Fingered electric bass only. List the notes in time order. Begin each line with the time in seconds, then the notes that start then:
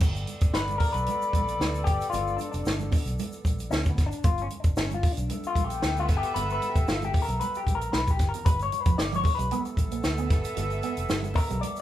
0.01 G1
0.42 F1
0.54 G1
0.95 B1
1.33 A#1
1.60 D2
1.87 G1
2.13 G1
2.54 F1
2.66 G1
3.06 B1
3.45 A#1
3.71 D2
3.98 G1
4.24 G1
4.64 F1
4.77 G1
5.18 B1
5.55 A#1
5.83 D2
6.09 G1
6.36 G1
6.75 F1
6.89 G1
7.28 B1
7.67 A#1
7.94 B1
8.19 G1
8.46 G1
8.86 F1
8.99 G1
9.39 B1
9.77 A#1
10.05 D2
10.31 G1
10.57 G1
10.97 F1
11.10 G1
11.51 B1